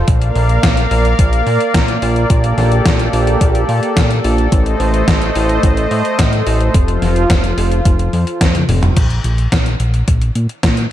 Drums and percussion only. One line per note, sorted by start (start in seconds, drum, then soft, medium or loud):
0.08 kick loud
0.08 closed hi-hat medium
0.22 closed hi-hat soft
0.35 open hi-hat medium
0.49 closed hi-hat soft
0.63 kick loud
0.63 snare loud
0.63 closed hi-hat medium
0.77 closed hi-hat soft
0.91 open hi-hat medium
1.05 closed hi-hat soft
1.19 kick loud
1.19 closed hi-hat medium
1.33 closed hi-hat soft
1.47 open hi-hat medium
1.60 closed hi-hat soft
1.74 kick loud
1.74 snare loud
1.74 closed hi-hat medium
1.88 closed hi-hat soft
2.02 open hi-hat medium
2.16 closed hi-hat soft
2.30 kick loud
2.30 closed hi-hat medium
2.44 closed hi-hat soft
2.58 snare soft
2.58 open hi-hat medium
2.72 closed hi-hat soft
2.86 kick loud
2.86 snare loud
2.86 closed hi-hat medium
2.99 closed hi-hat soft
3.13 open hi-hat medium
3.27 closed hi-hat soft
3.41 kick loud
3.41 closed hi-hat medium
3.55 closed hi-hat soft
3.69 open hi-hat medium
3.83 closed hi-hat soft
3.97 kick loud
3.97 snare loud
3.97 closed hi-hat medium
4.11 closed hi-hat soft
4.24 open hi-hat medium
4.38 closed hi-hat soft
4.52 kick loud
4.52 closed hi-hat medium
4.66 closed hi-hat soft
4.80 open hi-hat medium
4.94 closed hi-hat soft
5.08 kick loud
5.08 snare loud
5.08 closed hi-hat medium
5.22 closed hi-hat soft
5.35 open hi-hat medium
5.49 closed hi-hat soft
5.63 kick loud
5.63 closed hi-hat medium
5.77 closed hi-hat soft
5.91 open hi-hat medium
6.05 closed hi-hat soft
6.19 kick loud
6.19 snare loud
6.19 closed hi-hat medium
6.33 closed hi-hat soft
6.47 open hi-hat medium
6.61 closed hi-hat soft
6.74 kick loud
6.74 closed hi-hat medium
6.88 closed hi-hat soft
7.02 snare soft
7.02 open hi-hat medium
7.16 closed hi-hat soft
7.30 kick loud
7.30 snare loud
7.30 closed hi-hat loud
7.44 closed hi-hat soft
7.58 open hi-hat medium
7.72 closed hi-hat soft
7.85 kick loud
7.85 closed hi-hat loud
7.99 closed hi-hat soft
8.13 open hi-hat medium
8.27 closed hi-hat soft
8.41 kick loud
8.41 snare loud
8.41 closed hi-hat loud
8.55 closed hi-hat soft
8.55 high tom medium
8.69 open hi-hat medium
8.69 mid tom medium
8.83 closed hi-hat soft
8.83 mid tom medium
8.97 kick loud
8.97 closed hi-hat medium
8.97 crash medium
9.10 closed hi-hat soft
9.24 closed hi-hat medium
9.38 closed hi-hat soft
9.52 kick loud
9.52 snare loud
9.52 closed hi-hat medium
9.66 closed hi-hat soft
9.80 closed hi-hat medium
9.94 closed hi-hat soft
10.08 kick loud
10.08 closed hi-hat medium
10.22 closed hi-hat soft
10.35 closed hi-hat medium
10.49 closed hi-hat soft
10.63 kick loud
10.63 snare loud
10.63 closed hi-hat medium
10.77 closed hi-hat soft